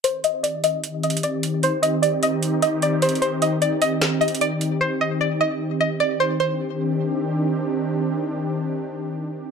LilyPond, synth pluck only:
\new Staff \with { instrumentName = "Synth pluck" } { \time 4/4 \key c \minor \tempo 4 = 151 c''8 ees''8 d''8 ees''4 ees''8 d''4 | c''8 ees''8 d''8 ees''4 ees''8 d''8 c''8 | c''8 ees''8 d''8 ees''4 ees''8 d''4 | c''8 ees''8 d''8 ees''4 ees''8 d''8 c''8 |
c''2. r4 | r1 | }